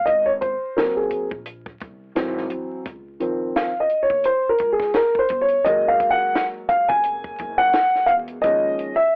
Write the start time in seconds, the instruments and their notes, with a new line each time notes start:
0.06 upright bass G#1, upright piano D#5, closed hi-hat
0.26 upright piano C#5
0.41 upright piano C5, kick, closed hi-hat
0.76 upright piano F#3 A#3 C4 A#4, snare, closed hi-hat
0.97 upright piano G#4
1.11 kick, closed hi-hat
1.31 upright bass A#1, kick
1.46 closed hi-hat
1.66 kick
1.80 upright bass C2, kick, closed hi-hat
2.15 upright bass G#1, upright piano E3 F#3 C4, snare, closed hi-hat
2.37 snare
2.50 upright bass D2, closed hi-hat
2.85 upright bass C#2, kick, closed hi-hat
3.20 upright piano D#3 F3 C4, closed hi-hat
3.56 upright piano F5, snare, closed hi-hat
3.80 upright piano D#5
3.90 closed hi-hat
4.03 upright piano C#5
4.10 upright bass D#2, kick
4.24 upright piano C5, closed hi-hat
4.49 upright piano A#4
4.58 upright bass C#2, kick, closed hi-hat
4.73 upright piano G#4
4.80 kick, snare
4.94 upright piano A#4, snare, closed hi-hat
5.15 upright piano C5, kick
5.29 upright bass G1, kick, closed hi-hat
5.41 upright piano C#5
5.48 closed hi-hat
5.64 upright bass F#1, upright piano F#3 G#3 A#3 D#5, closed hi-hat
5.88 upright piano F5
6.00 kick, closed hi-hat
6.10 upright piano F#5
6.35 snare, closed hi-hat
6.69 upright piano F5, kick, closed hi-hat
6.88 upright bass F1, upright piano G#5, kick
7.04 closed hi-hat
7.24 kick
7.38 upright bass F#1, kick, closed hi-hat
7.58 upright piano F#5
7.73 snare, closed hi-hat
7.95 snare
8.06 upright bass E2, upright piano F5, closed hi-hat
8.28 closed hi-hat
8.42 upright bass D#2, upright piano F3 G#3 C#4 D#5, kick, closed hi-hat
8.79 closed hi-hat
8.96 upright piano E5